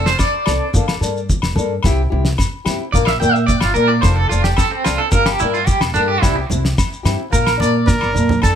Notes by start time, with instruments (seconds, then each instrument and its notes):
Already playing: upright bass F1
0.06 clean electric guitar C5, snare
0.19 clean electric guitar D5, kick, snare, low agogo, shekere
0.46 upright bass C2, steel-string acoustic guitar D4 A4, snare, low agogo, shekere
0.50 steel-string acoustic guitar C4
0.74 upright bass G1, steel-string acoustic guitar A#3 D4 A4, muted steel-string acoustic guitar stroke, kick, muted conga, high conga, shekere
0.88 snare, low agogo
1.01 upright bass G2, steel-string acoustic guitar A#3 D4 A4, snare, muted conga, shekere
1.17 shekere
1.30 kick, muted conga, high conga, shekere
1.42 upright bass E1, snare, low agogo
1.56 upright bass G2, steel-string acoustic guitar A#3 D4 A4, high conga, shekere
1.83 upright bass C2, steel-string acoustic guitar C4 E4 G4, muted steel-string acoustic guitar stroke, kick, snare, muted conga, low agogo, shekere
2.10 upright bass C2, steel-string acoustic guitar C4 E4 G4
2.25 snare
2.38 kick, snare, low agogo, shekere
2.65 upright bass G2, steel-string acoustic guitar C4 E4 G4, snare, low agogo
2.69 shekere
2.92 upright bass A#1, steel-string acoustic guitar F3 A#3 D4 A#4, clean electric guitar D5, kick, muted conga, shekere
3.05 clean electric guitar E5, snare, low agogo
3.20 upright bass A#2, steel-string acoustic guitar A#3 D4 A#4, clean electric guitar G5, muted conga, high conga, shekere
3.33 clean electric guitar E5, shekere
3.46 clean electric guitar D5, kick, muted conga, high conga, shekere
3.60 upright bass G1, clean electric guitar F4, snare, low agogo
3.74 upright bass A#2, steel-string acoustic guitar D4 A#4, clean electric guitar A#4, shekere
3.78 steel-string acoustic guitar A#3
3.88 clean electric guitar D5
4.01 upright bass F1, steel-string acoustic guitar F3 C4 D4 A4, clean electric guitar C5, kick, snare, low agogo, shekere
4.16 clean electric guitar A4
4.29 upright bass F1, steel-string acoustic guitar C4 D4 A4, clean electric guitar F4, shekere
4.44 clean electric guitar G4, snare
4.57 clean electric guitar A4, kick, snare, low agogo, shekere
4.71 clean electric guitar C4
4.84 upright bass C2, steel-string acoustic guitar C4 D4 A4, clean electric guitar F4, snare, low agogo, shekere
4.98 clean electric guitar A4
5.12 upright bass G1, steel-string acoustic guitar G3 A#3 D4 A4, clean electric guitar A#4, kick, muted conga, high conga, shekere
5.26 clean electric guitar G4, snare, low agogo
5.39 upright bass G2, steel-string acoustic guitar A#3 D4, clean electric guitar E4, muted steel-string acoustic guitar stroke, muted conga, shekere
5.54 clean electric guitar F4, shekere
5.67 clean electric guitar G4, kick, muted conga, high conga, shekere
5.81 upright bass E1, muted clean electric guitar stroke, snare, low agogo
5.94 upright bass G2, clean electric guitar D4, steel-string acoustic guitar A4, high conga, shekere
5.98 steel-string acoustic guitar A#3
6.08 clean electric guitar G4
6.21 upright bass C2, steel-string acoustic guitar G3 C4 E4 G4, clean electric guitar E4, kick, snare, low agogo, shekere
6.36 muted clean electric guitar stroke
6.50 upright bass C2, steel-string acoustic guitar C4 E4, low conga, shekere
6.65 snare, shekere
6.78 kick, snare, low agogo, shekere
6.93 shekere
7.03 upright bass G2, steel-string acoustic guitar C4 E4 G4, snare, low agogo, shekere
7.30 upright bass A#1, steel-string acoustic guitar F3 A#3 D4, clean electric guitar A#4, kick, muted conga, shekere
7.47 snare, low agogo, shekere
7.57 upright bass A#2, steel-string acoustic guitar A#3 D4, clean electric guitar D5, snare, muted conga, high conga
7.62 shekere
7.87 trumpet A#4, kick, snare, muted conga, high conga, low conga, shekere
8.01 upright bass G1, high conga, low agogo, shekere
8.14 upright bass A#2, steel-string acoustic guitar A#3 D4, mid tom, low conga, shekere
8.29 floor tom, low conga, shekere
8.42 upright bass F2, steel-string acoustic guitar C4 D4 A4, trumpet A4, clean electric guitar A5, muted steel-string acoustic guitar stroke, kick, snare, muted conga, low agogo, shekere